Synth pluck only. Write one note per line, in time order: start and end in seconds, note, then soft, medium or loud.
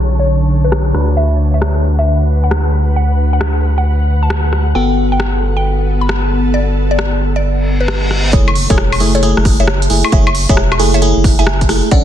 0.19 0.45 C#5 medium
0.64 0.83 B4 medium
1.17 1.37 E5 medium
1.54 1.79 E5 medium
1.99 2.24 E5 medium
2.44 2.62 F#5 medium
2.96 3.17 F#5 medium
3.33 3.58 F#5 medium
3.78 4.03 F#5 medium
4.23 4.41 A5 medium
4.75 4.96 G5 medium
5.12 5.37 G5 medium
5.57 5.82 G5 medium
6.01 6.20 B5 medium
6.54 6.75 D5 medium
6.91 7.16 D5 medium
7.36 7.61 D5 medium
7.81 8.00 B4 medium
8.33 8.54 A4 medium
8.33 8.54 C#5 loud
8.70 8.95 A4 medium
8.70 8.95 C#5 medium
9.15 9.40 A4 medium
9.15 9.40 C#5 loud
9.60 9.79 C#5 medium
9.60 9.79 E5 medium
10.13 10.33 C#5 medium
10.13 10.33 E5 loud
10.49 10.75 C#5 medium
10.49 10.75 E5 medium
10.94 11.19 C#5 medium
10.94 11.19 E5 loud
11.39 11.58 E5 medium
11.39 11.58 G#5 medium
11.91 12.04 D5 medium
11.91 12.04 F#5 loud